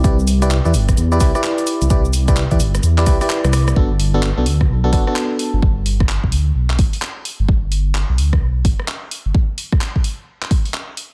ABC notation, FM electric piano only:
X:1
M:4/4
L:1/16
Q:"Swing 16ths" 1/4=129
K:G
V:1 name="FM electric piano"
[EGBd] z2 [EGBd] z [EGBd] z3 [EGBd] [EGBd] [EGBd]4- [EGBd] | [EGBd] z2 [EGBd] z [EGBd] z3 [EGBd] [EGBd] [EGBd]4- [EGBd] | [B,DFA] z2 [B,DFA] z [B,DFA] z3 [B,DFA] [B,DFA] [B,DFA]4- [B,DFA] | z16 |
z16 | z16 |]